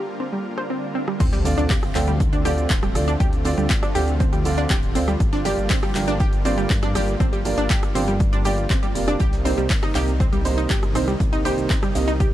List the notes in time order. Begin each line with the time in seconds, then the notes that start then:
Already playing: A#2 D3 G3 A#3 F4 G4 A#4 D5
0.20 C4, swell
0.33 G3
0.58 C5, cross-stick
0.70 C4
0.95 C4
1.08 G3, cross-stick
1.20 D2 D3 F3 A3 C4 F4 C5, kick, closed hi-hat, crash, impact, shaker
1.32 G3 G4, snare, closed hi-hat, shaker
1.45 D3 C4 F4 A4 D5, snare, closed hi-hat, open hi-hat, shaker
1.58 D2 D4 D5, closed hi-hat, shaker
1.70 G4 G5, kick, snare, clap, closed hi-hat, open hi-hat, shaker
1.83 cross-stick, closed hi-hat, shaker
1.95 D2 D3 C4 F4 A4 C5 G5, snare, clap, closed hi-hat, open hi-hat, shaker
2.07 G3 G4, closed hi-hat, shaker
2.20 kick, closed hi-hat, shaker
2.33 D2 D4 D5, closed hi-hat, shaker
2.45 D3 C4 F4 G4 A4 D5 G5, closed hi-hat, open hi-hat, shaker
2.58 closed hi-hat, shaker
2.70 D1 C4 C5, kick, snare, clap, closed hi-hat, shaker
2.83 G3 G4, cross-stick, closed hi-hat, shaker
2.95 D2 D3 C4 F4 A4 D5, cross-stick, closed hi-hat, open hi-hat, shaker
3.08 D4 D5, closed hi-hat, shaker
3.20 D2 G4 G5, kick, closed hi-hat, shaker
3.33 closed hi-hat, shaker
3.45 D3 C4 F4 A4 C5 D5, closed hi-hat, open hi-hat, shaker
3.58 D2 G3 G4, closed hi-hat, shaker
3.70 kick, snare, clap, closed hi-hat, shaker
3.83 D4 D5, cross-stick, closed hi-hat, shaker
3.95 D2 D3 C4 F4 G4 A4 G5, closed hi-hat, open hi-hat, shaker
4.08 closed hi-hat, shaker
4.20 C4 C5, kick, closed hi-hat, shaker
4.33 D2 G3 G4, closed hi-hat, shaker
4.45 D3 C4 F4 A4 D5, closed hi-hat, open hi-hat, shaker
4.58 D4 D5, closed hi-hat, shaker
4.70 D1 G4 G5, kick, snare, clap, closed hi-hat, shaker
4.83 closed hi-hat, shaker
4.95 D2 C4 F4 A4 C5 D5, closed hi-hat, open hi-hat, shaker
5.08 G3 G4, cross-stick, closed hi-hat, shaker
5.20 G1 G3 A#3, kick, closed hi-hat, shaker
5.32 D4 D5, snare, closed hi-hat, shaker
5.45 G2 A#3 F4 G4 D5 G5, snare, closed hi-hat, open hi-hat, shaker
5.58 G1, closed hi-hat, shaker
5.70 C4 C5, kick, snare, clap, closed hi-hat, open hi-hat, shaker
5.83 G3 G4, cross-stick, closed hi-hat, shaker
5.95 G1 G2 A#3 F4 G4 G5, snare, clap, closed hi-hat, open hi-hat, shaker
6.08 D4 D5, closed hi-hat, shaker
6.20 G4 G5, kick, closed hi-hat, shaker
6.33 G1, closed hi-hat, shaker
6.45 G2 A#3 C4 F4 G4 C5 D5, closed hi-hat, open hi-hat, shaker
6.58 G3 G4, closed hi-hat, shaker
6.70 G2, kick, snare, clap, closed hi-hat, shaker
6.83 D4 D5, cross-stick, closed hi-hat, shaker
6.95 G1 G2 A#3 F4 G4 D5 G5, cross-stick, closed hi-hat, open hi-hat, shaker
7.08 closed hi-hat, shaker
7.20 G1 C4 C5, kick, closed hi-hat, shaker
7.33 G3 G4, closed hi-hat, shaker
7.45 G2 A#3 F4 G4 D5, closed hi-hat, open hi-hat, shaker
7.58 G1 D4 D5, closed hi-hat, shaker
7.70 G4 G5, kick, snare, clap, closed hi-hat, shaker
7.82 cross-stick, closed hi-hat, shaker
7.95 G1 G2 A#3 C4 F4 G4 C5 G5, closed hi-hat, open hi-hat, shaker
8.08 G3 G4, closed hi-hat, shaker
8.20 kick, closed hi-hat, shaker
8.33 G1 D4 D5, closed hi-hat, shaker
8.45 G2 A#3 F4 G4 D5 G5, closed hi-hat, open hi-hat, shaker
8.58 closed hi-hat, shaker
8.69 G1 C4 C5, kick, snare, clap, closed hi-hat, shaker
8.83 G3 G4, closed hi-hat, shaker
8.95 F1 C3 A#3 F4 G4 D5, closed hi-hat, open hi-hat, shaker
9.08 D4 D5, cross-stick, closed hi-hat, shaker
9.20 C2 C3 D#3 A#3 D#4 G4 G5, kick, closed hi-hat, shaker
9.32 snare, closed hi-hat, shaker
9.44 C3 A#3 C4 D#4 G4 C5, snare, closed hi-hat, open hi-hat, shaker
9.58 C2 G3 G4, shaker
9.70 kick, snare, clap, closed hi-hat, open hi-hat, shaker
9.83 D#4 D#5, cross-stick, closed hi-hat, shaker
9.95 C2 C3 A#3 D#4 G4 D#5 G5, snare, clap, closed hi-hat, open hi-hat, shaker
10.07 closed hi-hat, shaker
10.20 C4 C5, kick, closed hi-hat, shaker
10.33 C2 G3 G4, closed hi-hat, shaker
10.45 C3 A#3 D#4 G4 C5, closed hi-hat, open hi-hat, shaker
10.58 D#4 D#5, closed hi-hat, shaker
10.70 G1 G4 G5, kick, snare, clap, closed hi-hat, shaker
10.83 cross-stick, closed hi-hat, shaker
10.95 C2 C3 A#3 C4 D#4 G4 C5, cross-stick, closed hi-hat, open hi-hat, shaker
11.08 G3 G4, closed hi-hat, shaker
11.20 C2, kick, closed hi-hat, shaker
11.33 D#4 D#5, closed hi-hat, shaker
11.45 C3 A#3 D#4 G4 C5 G5, closed hi-hat, open hi-hat, shaker
11.58 C2, closed hi-hat, shaker
11.70 C4 C5, kick, snare, clap, closed hi-hat, shaker
11.82 G3 G4, cross-stick, closed hi-hat, shaker
11.95 C2 C3 A#3 D#4 G4 D#5, closed hi-hat, open hi-hat, shaker
12.08 D#4 D#5, closed hi-hat, shaker
12.20 G4 G5, kick, closed hi-hat, shaker